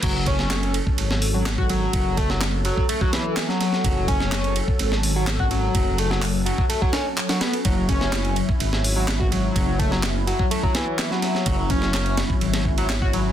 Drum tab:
CC |x---------------|----------------|----------------|----------------|
RD |x-x-xxx-x---x-x-|x-x-x-x-x-x-x-x-|x-x-xxx-x---x-x-|x-x---x-x-x-xxxx|
HH |----------o-----|----------------|----------o-----|----o-----------|
CP |----x-------x---|----x-------x---|----x-------x---|----x-------x---|
SD |---oo----o--o---|---oo-----o-oooo|---oo----o--o---|---o------o--oo-|
BD |o-o----o-----o--|o-o----o-o------|o-o----o-----o--|o------o-o------|

CC |----------------|----------------|----------------|
RD |x-x-xxx-x---x-x-|x-x-x-x-x-x-x-x-|x-x-xxx-xx-xx-x-|
HH |----------o-----|----------------|----------------|
CP |----x-------x---|----x-------x---|----x-------x---|
SD |---oo----o--o---|---oo-----o-oooo|---oo-o--o--o---|
BD |o-o----o-----o--|o-o----o-o------|o-o----o--o--o--|